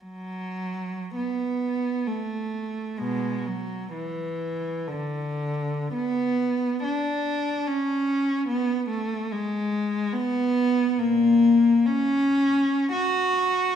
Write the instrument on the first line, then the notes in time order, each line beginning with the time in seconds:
cello
0.03 F#3
1.16 B3
2.07 A3
2.99 B2 G#3
3.46 F#3
3.94 E3
4.87 D3
5.94 B3
6.84 D4
7.67 C#4
8.48 B3
8.88 A3
9.32 G#3
10.13 B3
10.98 A#2 A#3
11.86 C#4
12.92 F#4